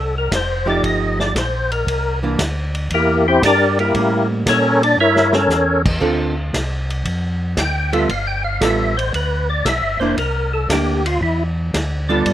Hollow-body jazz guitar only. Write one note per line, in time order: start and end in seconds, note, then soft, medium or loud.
0.66 1.31 F3 medium
0.66 1.31 A3 medium
0.66 1.32 D#4 medium
0.66 1.32 G4 medium
2.23 2.37 E3 medium
2.23 2.37 A#3 medium
2.23 2.38 D4 medium
3.95 5.40 G3 medium
3.95 5.41 A#3 medium
3.95 5.41 C#4 medium
6.01 6.33 D3 medium
6.01 6.33 C4 medium
6.01 6.33 F4 medium
6.01 6.34 A4 medium
7.92 8.07 G3 medium
7.92 8.08 B3 medium
7.92 8.08 F4 medium
7.92 8.07 A4 medium
8.61 8.93 G3 soft
8.61 8.93 B3 medium
8.61 8.93 F4 medium
8.61 8.94 A4 medium
10.01 10.15 A#3 medium
10.01 10.16 D4 medium
10.01 10.16 E4 medium
10.70 11.02 A#3 medium
10.70 11.02 D4 medium
10.70 11.02 E4 medium
12.09 12.33 G3 medium
12.09 12.33 B3 medium
12.09 12.33 F4 medium
12.09 12.33 A4 medium